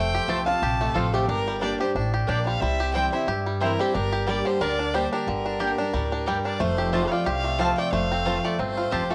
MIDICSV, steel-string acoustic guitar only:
0, 0, Header, 1, 2, 480
1, 0, Start_track
1, 0, Tempo, 332226
1, 1858, Time_signature, 4, 2, 24, 8
1, 13217, End_track
2, 0, Start_track
2, 0, Title_t, "Steel-string acoustic guitar"
2, 0, Program_c, 0, 25
2, 0, Note_on_c, 0, 41, 79
2, 415, Note_on_c, 0, 53, 46
2, 427, Note_on_c, 0, 57, 50
2, 433, Note_on_c, 0, 60, 59
2, 440, Note_on_c, 0, 65, 58
2, 660, Note_off_c, 0, 65, 0
2, 668, Note_off_c, 0, 53, 0
2, 674, Note_off_c, 0, 57, 0
2, 677, Note_off_c, 0, 60, 0
2, 678, Note_on_c, 0, 65, 53
2, 705, Note_on_c, 0, 60, 45
2, 853, Note_off_c, 0, 41, 0
2, 887, Note_off_c, 0, 65, 0
2, 901, Note_off_c, 0, 60, 0
2, 902, Note_on_c, 0, 48, 85
2, 1372, Note_on_c, 0, 53, 65
2, 1383, Note_on_c, 0, 57, 58
2, 1394, Note_on_c, 0, 60, 65
2, 1403, Note_on_c, 0, 65, 63
2, 1817, Note_off_c, 0, 48, 0
2, 1833, Note_off_c, 0, 53, 0
2, 1839, Note_off_c, 0, 57, 0
2, 1844, Note_off_c, 0, 60, 0
2, 1849, Note_off_c, 0, 65, 0
2, 1859, Note_on_c, 0, 43, 86
2, 2339, Note_on_c, 0, 55, 56
2, 2349, Note_on_c, 0, 58, 55
2, 2358, Note_on_c, 0, 62, 53
2, 2369, Note_on_c, 0, 67, 60
2, 2586, Note_off_c, 0, 67, 0
2, 2592, Note_off_c, 0, 55, 0
2, 2597, Note_off_c, 0, 58, 0
2, 2601, Note_off_c, 0, 62, 0
2, 2603, Note_on_c, 0, 67, 49
2, 2628, Note_on_c, 0, 62, 42
2, 2776, Note_off_c, 0, 43, 0
2, 2811, Note_off_c, 0, 67, 0
2, 2823, Note_off_c, 0, 62, 0
2, 2825, Note_on_c, 0, 45, 86
2, 3281, Note_off_c, 0, 45, 0
2, 3302, Note_on_c, 0, 46, 82
2, 3759, Note_off_c, 0, 46, 0
2, 3786, Note_on_c, 0, 48, 83
2, 4250, Note_on_c, 0, 52, 55
2, 4263, Note_on_c, 0, 55, 51
2, 4273, Note_on_c, 0, 60, 58
2, 4280, Note_on_c, 0, 64, 63
2, 4497, Note_off_c, 0, 64, 0
2, 4507, Note_off_c, 0, 52, 0
2, 4514, Note_off_c, 0, 55, 0
2, 4514, Note_on_c, 0, 64, 55
2, 4519, Note_off_c, 0, 60, 0
2, 4543, Note_on_c, 0, 60, 48
2, 4699, Note_off_c, 0, 48, 0
2, 4727, Note_off_c, 0, 64, 0
2, 4739, Note_on_c, 0, 43, 88
2, 4741, Note_off_c, 0, 60, 0
2, 5217, Note_on_c, 0, 52, 57
2, 5232, Note_on_c, 0, 55, 62
2, 5240, Note_on_c, 0, 60, 64
2, 5249, Note_on_c, 0, 64, 62
2, 5462, Note_off_c, 0, 64, 0
2, 5471, Note_off_c, 0, 52, 0
2, 5479, Note_off_c, 0, 55, 0
2, 5479, Note_on_c, 0, 64, 61
2, 5483, Note_off_c, 0, 60, 0
2, 5509, Note_on_c, 0, 60, 46
2, 5656, Note_off_c, 0, 43, 0
2, 5689, Note_off_c, 0, 64, 0
2, 5705, Note_off_c, 0, 60, 0
2, 5706, Note_on_c, 0, 43, 83
2, 6177, Note_on_c, 0, 55, 55
2, 6183, Note_on_c, 0, 58, 53
2, 6194, Note_on_c, 0, 62, 58
2, 6203, Note_on_c, 0, 67, 65
2, 6619, Note_off_c, 0, 43, 0
2, 6636, Note_off_c, 0, 55, 0
2, 6640, Note_off_c, 0, 58, 0
2, 6645, Note_off_c, 0, 62, 0
2, 6649, Note_off_c, 0, 67, 0
2, 6666, Note_on_c, 0, 50, 83
2, 7132, Note_on_c, 0, 55, 56
2, 7145, Note_on_c, 0, 58, 62
2, 7153, Note_on_c, 0, 62, 56
2, 7159, Note_on_c, 0, 67, 63
2, 7579, Note_off_c, 0, 50, 0
2, 7594, Note_off_c, 0, 55, 0
2, 7600, Note_off_c, 0, 58, 0
2, 7605, Note_off_c, 0, 62, 0
2, 7607, Note_off_c, 0, 67, 0
2, 7620, Note_on_c, 0, 43, 87
2, 8093, Note_on_c, 0, 55, 57
2, 8104, Note_on_c, 0, 58, 53
2, 8112, Note_on_c, 0, 62, 60
2, 8122, Note_on_c, 0, 67, 53
2, 8340, Note_off_c, 0, 67, 0
2, 8348, Note_off_c, 0, 55, 0
2, 8354, Note_off_c, 0, 58, 0
2, 8357, Note_on_c, 0, 67, 52
2, 8358, Note_off_c, 0, 62, 0
2, 8384, Note_on_c, 0, 62, 41
2, 8536, Note_off_c, 0, 43, 0
2, 8568, Note_off_c, 0, 67, 0
2, 8581, Note_off_c, 0, 62, 0
2, 8582, Note_on_c, 0, 45, 84
2, 9038, Note_off_c, 0, 45, 0
2, 9065, Note_on_c, 0, 43, 87
2, 9519, Note_off_c, 0, 43, 0
2, 9545, Note_on_c, 0, 41, 86
2, 10012, Note_on_c, 0, 53, 77
2, 10021, Note_on_c, 0, 57, 70
2, 10033, Note_on_c, 0, 60, 68
2, 10042, Note_on_c, 0, 65, 81
2, 10457, Note_off_c, 0, 41, 0
2, 10472, Note_off_c, 0, 53, 0
2, 10477, Note_off_c, 0, 57, 0
2, 10483, Note_off_c, 0, 60, 0
2, 10487, Note_off_c, 0, 65, 0
2, 10962, Note_on_c, 0, 53, 84
2, 10975, Note_on_c, 0, 57, 91
2, 10982, Note_on_c, 0, 60, 92
2, 10989, Note_on_c, 0, 65, 89
2, 11427, Note_off_c, 0, 53, 0
2, 11433, Note_off_c, 0, 57, 0
2, 11436, Note_off_c, 0, 60, 0
2, 11440, Note_off_c, 0, 65, 0
2, 11453, Note_on_c, 0, 41, 81
2, 11925, Note_on_c, 0, 53, 71
2, 11935, Note_on_c, 0, 57, 75
2, 11943, Note_on_c, 0, 60, 77
2, 11952, Note_on_c, 0, 65, 81
2, 12369, Note_off_c, 0, 41, 0
2, 12387, Note_off_c, 0, 53, 0
2, 12392, Note_off_c, 0, 57, 0
2, 12396, Note_off_c, 0, 60, 0
2, 12400, Note_off_c, 0, 65, 0
2, 12411, Note_on_c, 0, 43, 95
2, 12870, Note_off_c, 0, 43, 0
2, 12888, Note_on_c, 0, 41, 88
2, 13217, Note_off_c, 0, 41, 0
2, 13217, End_track
0, 0, End_of_file